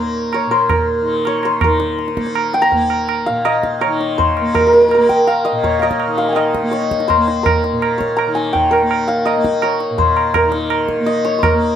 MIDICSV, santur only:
0, 0, Header, 1, 2, 480
1, 0, Start_track
1, 0, Tempo, 366300
1, 185, Time_signature, 4, 2, 24, 8
1, 8823, Tempo, 360794
1, 15507, End_track
2, 0, Start_track
2, 0, Title_t, "Santur"
2, 0, Program_c, 0, 15
2, 0, Note_on_c, 0, 70, 66
2, 0, Note_on_c, 0, 72, 79
2, 449, Note_on_c, 0, 73, 89
2, 527, Note_off_c, 0, 72, 0
2, 669, Note_on_c, 0, 72, 91
2, 748, Note_off_c, 0, 73, 0
2, 916, Note_off_c, 0, 70, 0
2, 921, Note_on_c, 0, 70, 58
2, 1661, Note_on_c, 0, 73, 94
2, 1740, Note_off_c, 0, 72, 0
2, 1901, Note_on_c, 0, 72, 84
2, 1980, Note_off_c, 0, 73, 0
2, 2146, Note_off_c, 0, 70, 0
2, 2151, Note_on_c, 0, 70, 72
2, 3329, Note_on_c, 0, 79, 97
2, 3431, Note_on_c, 0, 82, 116
2, 4276, Note_on_c, 0, 77, 91
2, 4523, Note_on_c, 0, 75, 106
2, 4994, Note_on_c, 0, 73, 88
2, 5072, Note_off_c, 0, 72, 0
2, 5477, Note_on_c, 0, 72, 94
2, 5556, Note_off_c, 0, 73, 0
2, 5857, Note_off_c, 0, 70, 0
2, 5877, Note_off_c, 0, 82, 0
2, 5954, Note_on_c, 0, 70, 86
2, 6030, Note_off_c, 0, 70, 0
2, 6035, Note_on_c, 0, 70, 61
2, 6057, Note_off_c, 0, 79, 0
2, 6111, Note_off_c, 0, 70, 0
2, 6116, Note_on_c, 0, 70, 75
2, 6197, Note_off_c, 0, 70, 0
2, 6203, Note_on_c, 0, 70, 66
2, 6302, Note_off_c, 0, 70, 0
2, 6307, Note_on_c, 0, 70, 73
2, 6396, Note_off_c, 0, 70, 0
2, 6401, Note_on_c, 0, 70, 70
2, 6477, Note_off_c, 0, 70, 0
2, 6483, Note_on_c, 0, 70, 77
2, 6672, Note_on_c, 0, 79, 89
2, 6904, Note_off_c, 0, 77, 0
2, 6909, Note_on_c, 0, 77, 93
2, 7133, Note_off_c, 0, 75, 0
2, 7138, Note_on_c, 0, 75, 93
2, 7391, Note_on_c, 0, 73, 93
2, 7470, Note_off_c, 0, 72, 0
2, 7586, Note_off_c, 0, 77, 0
2, 7592, Note_on_c, 0, 77, 62
2, 7633, Note_off_c, 0, 75, 0
2, 7639, Note_on_c, 0, 75, 94
2, 8092, Note_off_c, 0, 77, 0
2, 8097, Note_on_c, 0, 77, 87
2, 8115, Note_on_c, 0, 85, 40
2, 8158, Note_on_c, 0, 84, 42
2, 8186, Note_on_c, 0, 82, 48
2, 8237, Note_off_c, 0, 73, 0
2, 8239, Note_on_c, 0, 80, 54
2, 8281, Note_off_c, 0, 79, 0
2, 8286, Note_on_c, 0, 79, 61
2, 8315, Note_off_c, 0, 77, 0
2, 8320, Note_on_c, 0, 77, 64
2, 8331, Note_off_c, 0, 75, 0
2, 8336, Note_on_c, 0, 75, 99
2, 8798, Note_on_c, 0, 73, 84
2, 8877, Note_off_c, 0, 84, 0
2, 9283, Note_on_c, 0, 72, 95
2, 9363, Note_off_c, 0, 73, 0
2, 9363, Note_off_c, 0, 85, 0
2, 9747, Note_off_c, 0, 70, 0
2, 9752, Note_on_c, 0, 70, 78
2, 10480, Note_on_c, 0, 73, 75
2, 10559, Note_off_c, 0, 72, 0
2, 10659, Note_off_c, 0, 82, 0
2, 10729, Note_on_c, 0, 82, 93
2, 10895, Note_off_c, 0, 80, 0
2, 10972, Note_on_c, 0, 80, 91
2, 11052, Note_off_c, 0, 79, 0
2, 11212, Note_on_c, 0, 79, 97
2, 11262, Note_off_c, 0, 77, 0
2, 11292, Note_off_c, 0, 80, 0
2, 11447, Note_off_c, 0, 70, 0
2, 11452, Note_on_c, 0, 70, 86
2, 11495, Note_off_c, 0, 75, 0
2, 11941, Note_on_c, 0, 77, 89
2, 12177, Note_on_c, 0, 75, 100
2, 12672, Note_off_c, 0, 73, 0
2, 12678, Note_on_c, 0, 73, 83
2, 13144, Note_on_c, 0, 72, 90
2, 13212, Note_off_c, 0, 82, 0
2, 13224, Note_off_c, 0, 73, 0
2, 13633, Note_off_c, 0, 70, 0
2, 13639, Note_on_c, 0, 70, 87
2, 13982, Note_off_c, 0, 79, 0
2, 14580, Note_off_c, 0, 75, 0
2, 14585, Note_on_c, 0, 75, 89
2, 14826, Note_on_c, 0, 73, 87
2, 14891, Note_off_c, 0, 77, 0
2, 14906, Note_off_c, 0, 72, 0
2, 15012, Note_on_c, 0, 72, 59
2, 15075, Note_off_c, 0, 70, 0
2, 15080, Note_on_c, 0, 70, 82
2, 15092, Note_off_c, 0, 73, 0
2, 15507, Note_off_c, 0, 70, 0
2, 15507, Note_off_c, 0, 72, 0
2, 15507, Note_off_c, 0, 75, 0
2, 15507, End_track
0, 0, End_of_file